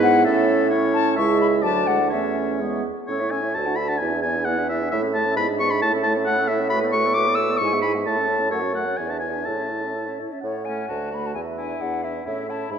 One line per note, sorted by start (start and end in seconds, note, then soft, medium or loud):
0.00 0.28 G#2 loud
0.00 0.29 B3 medium
0.00 0.26 E4 medium
0.00 0.25 B4 loud
0.00 0.26 F#5 loud
0.24 1.17 A2 medium
0.24 0.74 C#4 medium
0.24 0.73 E4 medium
0.24 0.69 A4 medium
0.24 0.70 E5 loud
0.70 1.18 C#4 medium
0.70 1.18 E4 medium
0.70 1.15 C#5 loud
0.93 1.15 A5 loud
1.16 1.65 C#2 medium
1.16 1.66 G#3 medium
1.16 1.61 E4 medium
1.16 1.64 E5 medium
1.16 1.40 C#6 loud
1.41 1.47 B5 loud
1.62 2.14 D2 medium
1.62 1.88 F#3 medium
1.62 2.14 D4 medium
1.62 2.09 D5 medium
1.62 1.88 A5 loud
1.87 1.99 G#3 medium
1.87 2.11 F#5 loud
2.10 2.85 E2 medium
2.10 2.62 A3 medium
2.10 2.62 C#4 medium
2.10 2.82 C#5 medium
2.10 2.59 E5 medium
2.60 2.85 G#3 medium
2.60 2.85 B3 medium
3.07 3.57 A2 medium
3.07 3.22 C#4 medium
3.07 3.23 A4 medium
3.07 3.32 C#5 medium
3.07 3.21 C#5 medium
3.20 3.34 E4 medium
3.20 3.33 C#5 medium
3.20 3.33 E5 medium
3.31 3.45 C#4 medium
3.31 3.46 A4 medium
3.31 3.44 C#5 medium
3.31 3.56 G#5 medium
3.43 3.54 E4 medium
3.43 3.55 C#5 medium
3.43 3.55 E5 medium
3.54 4.01 D2 medium
3.54 3.68 F#4 medium
3.54 3.69 A4 medium
3.54 3.78 A5 medium
3.54 3.67 A5 medium
3.66 3.79 D4 medium
3.66 3.80 F#4 medium
3.66 3.79 F#5 medium
3.76 3.91 F#4 medium
3.76 3.91 A4 medium
3.76 3.90 A5 medium
3.76 3.90 B5 medium
3.88 4.00 D4 medium
3.88 4.01 F#4 medium
3.88 4.00 F#5 medium
3.88 3.99 A5 medium
3.98 4.91 E2 medium
3.98 4.13 B3 medium
3.98 4.15 E4 medium
3.98 4.13 D5 medium
3.98 4.21 G#5 medium
4.11 4.25 D4 medium
4.11 4.27 G#4 medium
4.11 4.25 E5 medium
4.22 4.37 B3 medium
4.22 4.39 E4 medium
4.22 4.37 D5 medium
4.22 4.47 G#5 medium
4.35 4.46 D4 medium
4.35 4.48 G#4 medium
4.35 4.45 E5 soft
4.45 4.60 B3 medium
4.45 4.61 E4 medium
4.45 4.60 D5 medium
4.45 4.69 F#5 loud
4.58 4.71 D4 medium
4.58 4.72 G#4 medium
4.58 4.73 E5 medium
4.69 4.83 B3 medium
4.69 4.84 E4 medium
4.69 4.85 D5 medium
4.69 4.91 E5 medium
4.81 4.92 D4 medium
4.81 4.92 G#4 medium
4.81 4.93 E5 medium
4.91 5.38 A2 medium
4.91 5.05 A3 medium
4.91 5.06 E4 medium
4.91 5.06 C#5 medium
4.91 5.02 E5 medium
5.04 5.17 C#4 medium
5.04 5.18 A4 medium
5.04 5.19 E5 medium
5.15 5.28 A3 medium
5.15 5.29 E4 medium
5.15 5.29 C#5 medium
5.15 5.36 A5 medium
5.26 5.37 C#4 medium
5.26 5.37 A4 medium
5.26 5.38 E5 medium
5.37 5.84 G#2 medium
5.37 5.51 B3 medium
5.37 5.49 E4 medium
5.37 5.51 D5 medium
5.37 5.47 B5 medium
5.48 5.62 D4 medium
5.48 5.61 G#4 medium
5.48 5.64 E5 medium
5.59 5.74 B3 medium
5.59 5.72 E4 medium
5.59 5.74 D5 medium
5.59 5.72 C#6 loud
5.71 5.82 D4 medium
5.71 5.82 G#4 medium
5.71 5.83 E5 medium
5.71 5.82 B5 medium
5.82 7.60 A2 medium
5.82 5.96 A3 medium
5.82 5.95 E4 medium
5.82 5.97 C#5 medium
5.82 5.92 A5 loud
5.94 6.07 C#4 medium
5.94 6.05 A4 medium
5.94 6.09 E5 medium
6.03 6.19 A3 medium
6.03 6.17 E4 medium
6.03 6.13 A5 medium
6.08 6.21 C#5 medium
6.15 6.27 C#4 medium
6.15 6.26 A4 medium
6.15 6.28 E5 medium
6.26 6.41 A3 medium
6.26 6.39 E4 medium
6.26 6.43 C#5 medium
6.26 6.49 F#5 loud
6.37 6.51 C#4 medium
6.37 6.50 A4 medium
6.41 6.52 E5 medium
6.48 6.62 A3 medium
6.48 6.61 E4 medium
6.48 6.63 C#5 medium
6.48 6.69 E5 medium
6.60 6.71 C#4 medium
6.60 6.70 A4 medium
6.60 6.72 E5 medium
6.70 6.85 A3 medium
6.70 6.83 F#4 medium
6.70 6.86 B4 medium
6.70 6.80 B5 loud
6.82 6.95 B3 medium
6.82 6.95 A4 medium
6.82 6.97 D5 medium
6.92 7.07 A3 medium
6.92 7.06 F#4 medium
6.92 7.07 B4 medium
6.92 7.16 C#6 loud
7.04 7.16 B3 medium
7.04 7.16 A4 medium
7.04 7.16 D5 medium
7.14 7.29 A3 medium
7.14 7.29 F#4 medium
7.14 7.30 B4 medium
7.14 7.36 D6 loud
7.27 7.40 B3 medium
7.27 7.40 A4 medium
7.27 7.42 D5 medium
7.35 7.51 A3 medium
7.35 7.51 F#4 medium
7.35 7.59 E6 loud
7.41 7.52 B4 medium
7.50 7.60 B3 medium
7.50 7.60 A4 medium
7.50 7.61 D5 medium
7.57 8.08 G#2 medium
7.57 7.74 G#3 medium
7.57 7.73 E4 medium
7.57 7.81 C#6 loud
7.62 7.75 G#5 medium
7.72 7.86 B3 medium
7.72 7.84 G#4 medium
7.72 7.85 E5 medium
7.82 7.97 G#3 medium
7.82 7.96 E4 medium
7.82 7.97 G#5 medium
7.82 7.93 B5 medium
7.94 8.06 B3 medium
7.94 8.05 G#4 medium
7.94 8.06 E5 soft
8.05 8.53 A2 medium
8.05 8.19 A3 medium
8.05 8.18 E4 medium
8.05 8.22 E5 medium
8.05 8.50 A5 medium
8.16 8.29 C#4 soft
8.16 8.28 A4 medium
8.16 8.32 C#5 medium
8.27 8.41 A3 medium
8.27 8.40 E4 medium
8.27 8.42 E5 medium
8.39 8.50 C#4 medium
8.39 8.49 A4 soft
8.39 8.51 C#5 soft
8.49 8.97 F#2 medium
8.49 8.64 A3 medium
8.49 8.63 A4 medium
8.49 8.73 C#5 medium
8.49 8.64 F#5 medium
8.61 8.75 C#4 soft
8.61 8.74 F#4 medium
8.61 8.75 C#5 soft
8.73 8.88 A3 medium
8.73 8.87 A4 soft
8.73 8.86 F#5 medium
8.73 8.99 F#5 medium
8.85 8.97 C#4 soft
8.85 8.96 F#4 soft
8.85 8.97 C#5 soft
8.97 9.49 E2 medium
8.97 9.11 E4 medium
8.97 9.10 B4 medium
8.97 9.11 D5 soft
8.97 9.12 G#5 medium
9.08 9.23 D4 soft
9.08 9.21 G#4 soft
9.08 9.23 E5 soft
9.08 9.19 A5 medium
9.20 9.37 E4 soft
9.20 9.32 B4 soft
9.20 9.33 D5 soft
9.20 9.47 G#5 medium
9.31 9.43 G#4 soft
9.31 9.44 E5 soft
9.35 9.46 D4 soft
9.44 10.20 A2 medium
9.44 9.61 E4 soft
9.44 9.57 A4 soft
9.44 9.59 C#5 soft
9.44 10.19 A5 medium
9.56 9.73 C#4 soft
9.56 9.71 C#5 soft
9.56 9.70 E5 soft
9.68 9.85 E4 soft
9.68 9.83 A4 soft
9.68 9.82 C#5 soft
9.81 9.95 C#4 soft
9.81 9.92 C#5 soft
9.81 9.94 E5 soft
9.93 10.09 E4 soft
9.93 10.08 A4 soft
9.93 10.07 C#5 soft
10.06 10.22 C#4 soft
10.06 10.20 C#5 soft
10.06 10.21 E5 soft
10.19 10.34 E4 soft
10.19 10.31 A4 soft
10.19 10.34 C#5 soft
10.29 10.43 C#4 soft
10.29 10.40 C#5 soft
10.29 10.42 E5 soft
10.41 10.84 A2 medium
10.41 10.66 C#5 medium
10.41 11.36 F#5 medium
10.65 10.89 A3 soft
10.65 10.87 C#4 soft
10.65 10.91 G#5 medium
10.88 11.30 D2 medium
10.88 11.13 A3 soft
10.88 11.10 F#4 soft
10.88 11.15 A5 medium
11.11 11.36 A3 soft
11.11 11.34 F#4 soft
11.11 11.28 B5 medium
11.26 11.33 A5 medium
11.34 11.75 E2 medium
11.34 11.82 E5 soft
11.34 11.40 G#5 medium
11.57 12.03 D4 soft
11.57 12.02 E4 soft
11.57 11.82 G#5 medium
11.81 12.21 E2 medium
11.81 12.12 D5 medium
11.81 12.05 F#5 medium
12.04 12.26 D4 soft
12.04 12.26 E4 soft
12.04 12.26 E5 medium
12.26 12.66 A2 medium
12.26 12.48 C#4 soft
12.26 12.48 E4 soft
12.26 12.71 C#5 medium
12.26 12.51 E5 medium
12.49 12.71 C#4 soft
12.49 12.71 E4 soft
12.49 12.72 A5 medium
12.70 12.79 G#2 medium
12.70 12.79 D4 soft
12.70 12.79 E4 soft
12.70 12.79 E5 medium
12.70 12.79 B5 medium